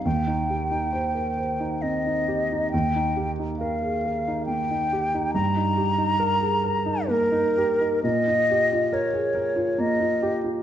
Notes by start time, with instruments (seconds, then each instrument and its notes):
0.04 grand piano D#2, flute G5
0.27 grand piano D#4
0.50 grand piano G4
0.71 grand piano D#4
0.93 grand piano C5
1.15 grand piano A#4
1.38 grand piano C5
1.60 grand piano D#4
1.82 grand piano C4, flute D#5
2.06 grand piano D#4
2.28 grand piano G4
2.52 grand piano D#4
2.71 grand piano D#2, flute G5
2.95 grand piano D#4
3.16 grand piano G4
3.39 grand piano D#4
3.59 grand piano A#4, flute F5
3.82 grand piano G#4
4.05 grand piano A#4
4.27 grand piano D#4
4.46 grand piano A#3, flute G5
4.70 grand piano D#4
4.93 grand piano G4
5.14 grand piano D#4
5.34 grand piano G2, flute A#5
5.56 grand piano D#4
5.77 grand piano G4
5.98 grand piano D#4
6.20 grand piano A#4
6.40 grand piano G#4
6.64 grand piano A#4
6.86 grand piano D#4
7.08 grand piano A#3, flute A#4
7.31 grand piano D#4
7.57 grand piano G4
7.81 grand piano D#4
8.03 grand piano A#2, flute D#5
8.28 grand piano F4
8.51 grand piano G4
8.73 grand piano F4
8.93 grand piano A#4, flute C#5
9.13 grand piano G#4
9.35 grand piano A#4
9.56 grand piano F4
9.78 grand piano A#3, flute D#5
10.00 grand piano F4
10.22 grand piano G4
10.44 grand piano F4